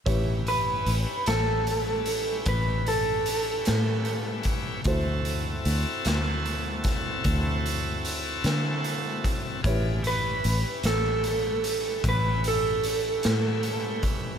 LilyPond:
<<
  \new Staff \with { instrumentName = "Electric slide guitar" } { \time 12/8 \key a \mixolydian \tempo 4. = 50 r8 b'4 a'4. b'8 a'2 r8 | r1. | r8 b'4 a'4. b'8 a'2 r8 | }
  \new Staff \with { instrumentName = "Upright piano" } { \time 12/8 \key a \mixolydian <e' g' b' cis''>1. | <e' fis' a' c''>1. | <e' g' b' cis''>1. | }
  \new Staff \with { instrumentName = "Tonewheel organ" } { \time 12/8 \key a \mixolydian <cis' e' g' b'>1. | <c' e' fis' a'>1. | <f gis d' b'>8 <cis' e' g' b'>1~ <cis' e' g' b'>4. | }
  \new Staff \with { instrumentName = "Fingered electric bass" } { \clef bass \time 12/8 \key a \mixolydian a,,4 a,,16 r16 a,,4. a,,4. a,4. | d,4 d,16 r16 d,4. d,4. d4. | a,,4 a,,16 r16 a,,4. a,,4. a,4. | }
  \new DrumStaff \with { instrumentName = "Drums" } \drummode { \time 12/8 <hh bd>8 hh8 hh8 <hh sn>8 hh8 hh8 <hh bd>8 hh8 hh8 <hh sn>8 hh8 <hh bd>8 | <hh bd>8 hh8 hh8 <hh sn>8 hh8 <hh bd sn>8 <hh bd>8 hh8 hh8 <hh sn>8 hh8 <hh bd>8 | <hh bd>8 hh8 hh8 <hh sn>8 hh8 hh8 <hh bd>8 hh8 hh8 <hh sn>8 hh8 <hh bd>8 | }
>>